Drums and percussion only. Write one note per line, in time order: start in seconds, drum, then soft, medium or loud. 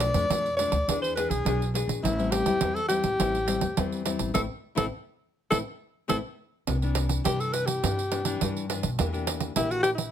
0.00 pandeiro medium
0.14 pandeiro medium
0.30 pandeiro medium
0.46 pandeiro soft
0.59 pandeiro medium
0.72 pandeiro medium
0.89 pandeiro medium
1.04 pandeiro soft
1.17 pandeiro medium
1.31 pandeiro medium
1.46 pandeiro medium
1.62 pandeiro soft
1.75 pandeiro medium
1.89 pandeiro medium
2.05 pandeiro medium
2.19 pandeiro soft
2.32 pandeiro medium
2.46 pandeiro medium
2.61 pandeiro medium
2.76 pandeiro soft
2.89 pandeiro medium
3.04 pandeiro medium
3.20 pandeiro medium
3.35 pandeiro soft
3.48 pandeiro medium
3.61 pandeiro medium
3.77 pandeiro medium
3.92 pandeiro soft
4.06 pandeiro medium
4.19 pandeiro medium
4.35 pandeiro medium
4.77 pandeiro medium
5.52 pandeiro medium
6.10 pandeiro medium
6.67 pandeiro medium
6.82 pandeiro soft
6.95 pandeiro medium
7.09 pandeiro medium
7.25 pandeiro medium
7.40 pandeiro soft
7.53 pandeiro medium
7.68 pandeiro medium
7.84 pandeiro medium
7.99 pandeiro soft
8.12 pandeiro medium
8.25 pandeiro medium
8.41 pandeiro medium
8.57 pandeiro soft
8.70 pandeiro medium
8.83 pandeiro medium
8.99 pandeiro medium
9.14 pandeiro soft
9.27 pandeiro medium
9.40 pandeiro medium
9.56 pandeiro medium
9.71 pandeiro soft
9.84 pandeiro medium
9.98 pandeiro medium